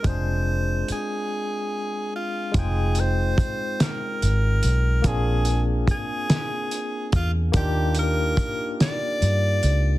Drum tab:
HH |x-x---|xxxxxx|xxxxxx|xxxxxx|
SD |------|---o--|---o--|---o--|
BD |o-----|o-o---|o-o--o|o-o---|